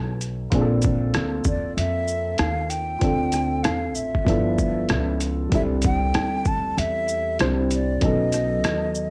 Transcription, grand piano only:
0.00 0.47 F#3 medium
0.00 0.48 B3 medium
0.00 0.48 C#4 soft
0.00 0.49 D#4 medium
0.00 0.50 A4 medium
0.50 2.98 A#3 medium
0.50 2.98 C4 medium
0.50 2.99 D4 medium
0.50 2.97 F4 medium
0.55 0.61 G#4 medium
0.61 3.03 A4 medium
2.99 4.24 C4 medium
2.99 4.24 D4 medium
2.99 4.23 F4 medium
3.04 4.26 A4 medium
4.25 5.48 F3 medium
4.25 5.49 B3 medium
4.25 5.50 D4 medium
4.29 5.50 E4 medium
4.29 5.51 A4 medium
5.49 7.34 G3 medium
5.49 7.35 C4 medium
5.49 7.36 D4 medium
5.49 7.36 E4 soft
5.54 7.37 A4 medium
7.39 8.02 G3 soft
7.39 8.02 C4 soft
7.39 8.03 D4 soft
7.39 8.03 E4 soft
7.39 8.03 C5 soft
8.01 9.10 F#3 medium
8.01 9.10 B3 soft
8.01 9.10 C#4 medium
8.01 9.10 D#4 medium
8.05 9.10 A4 medium

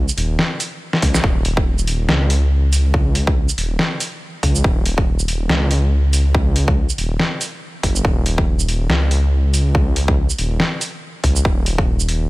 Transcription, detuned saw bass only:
0.17 0.37 D#1 medium
1.03 1.22 C#2 loud
1.24 1.86 D#1 loud
1.87 2.07 D#1 medium
2.09 3.47 C#2 medium
3.57 3.77 D#1 medium
4.43 4.63 C#2 loud
4.64 5.27 D#1 loud
5.28 5.48 D#1 medium
5.49 6.87 C#2 medium
6.98 7.18 D#1 medium
7.83 8.03 F#1 loud
8.05 8.67 D#1 loud
8.68 8.88 D#1 medium
8.90 10.28 C#2 medium
10.39 10.58 D#1 medium
11.24 11.44 C#2 loud
11.45 12.08 D#1 loud
12.09 12.29 D#1 medium

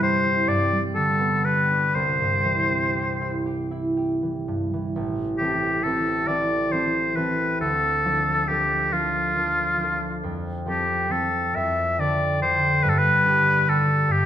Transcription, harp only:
0.00 0.47 G2 soft
0.00 0.51 E3 soft
0.00 0.71 G3 soft
0.00 0.51 C4 soft
0.00 1.44 G4 soft
0.00 0.51 C5 soft
0.24 0.51 E4 soft
0.48 1.98 G2 soft
0.72 4.62 G3 soft
0.96 1.98 D3 soft
1.19 1.98 B3 soft
1.45 2.94 G4 soft
1.71 1.99 D4 soft
1.95 4.97 C2 soft
2.21 4.47 G2 soft
2.45 4.21 E3 soft
2.70 5.40 C4 soft
2.96 3.45 G4 soft
3.21 3.70 E4 soft
3.46 3.96 G4 soft
3.71 7.61 E4 soft
3.97 7.64 G4 soft
4.22 4.72 E3 soft
4.48 4.98 G2 soft
4.74 4.98 E3 soft
4.96 7.64 A1 soft
5.40 5.84 E3 soft
5.40 5.84 C4 soft
5.40 5.85 A4 soft
5.85 6.27 E3 soft
5.85 6.27 C4 soft
5.85 6.28 A4 soft
6.28 6.72 E3 soft
6.28 6.71 C4 soft
6.28 6.72 A4 soft
6.73 7.15 E3 soft
6.73 7.16 C4 soft
6.73 7.16 A4 soft
7.16 7.63 E3 soft
7.16 7.64 C4 soft
7.16 8.05 A4 soft
7.60 10.29 D2 soft
8.05 8.48 F3 soft
8.05 8.49 D4 soft
8.05 8.50 A4 soft
8.49 8.92 F3 soft
8.49 8.92 D4 soft
8.49 8.92 A4 soft
8.93 9.36 F3 soft
8.93 9.37 D4 soft
8.93 9.37 A4 soft
9.36 9.77 F3 soft
9.36 9.79 D4 soft
9.36 9.79 A4 soft
9.77 10.65 F3 soft
9.77 10.28 D4 soft
9.83 10.66 A4 soft
10.23 11.55 F2 soft
10.66 11.09 F3 soft
10.66 11.10 C4 soft
10.66 11.09 A4 soft
11.10 12.87 F3 soft
11.10 11.59 C4 soft
11.10 11.99 A4 soft
11.56 12.88 F2 soft
11.98 12.41 D3 soft
11.98 12.42 D4 soft
11.98 12.42 A4 soft
12.42 12.88 D3 soft
12.42 13.25 D4 soft
12.42 12.88 A4 soft
12.84 14.07 G2 soft
13.24 13.67 D3 soft
13.24 13.67 D4 soft
13.24 13.68 G4 soft
13.68 14.13 D3 soft
13.68 14.13 D4 soft
13.68 14.26 G4 soft
14.08 14.26 G2 soft

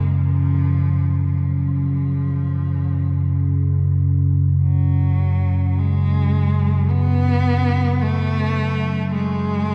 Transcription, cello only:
0.00 0.15 G#3 medium
0.14 1.26 F3 loud
1.27 4.02 F3 medium
4.63 5.80 F#3 medium
5.79 6.92 G#3 medium
6.91 8.03 B3 loud
8.01 9.10 A3 loud
9.14 9.75 G#3 loud

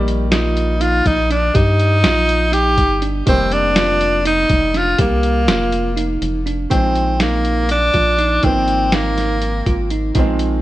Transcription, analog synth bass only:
0.00 1.02 A#1 loud
1.06 1.51 A#1 medium
1.55 2.06 G2 loud
2.05 2.79 A#1 medium
2.78 3.23 G1 medium
3.27 4.46 F1 loud
4.50 4.95 F1 medium
4.99 5.49 C2 loud
5.48 6.18 F1 medium
6.22 6.67 F1 medium
6.71 7.90 A#1 loud
7.94 8.40 A#1 medium
8.44 9.63 G#1 loud
9.67 10.12 G#1 medium
10.16 10.62 A#1 loud

